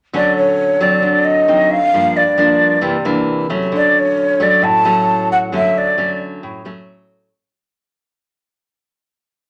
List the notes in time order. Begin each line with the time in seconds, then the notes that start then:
0.13 D3 F#3 A3 C#4 D5
0.37 C#5
0.80 F#3 C4 D5
1.02 D3
1.24 D#5
1.48 F#3 C4 D#4
1.70 F5
1.93 G2 F3 A#3 D4
2.16 D5
2.38 F3 A#3 D4
2.81 C3 E3 A#3 D4
3.05 E3 A#3 D4
3.50 F#3 A3 C#4
3.72 D3
3.76 D5
3.99 C#5
4.40 F#3 A3 C#4 D5
4.62 A2 A5
4.85 F#3 A3 C#4
5.32 F#5
5.52 D3 F#3 A3 C#4 E5
5.78 D5
5.98 F#3 A3 C#4
6.43 A2
6.65 F#3 A3 C#4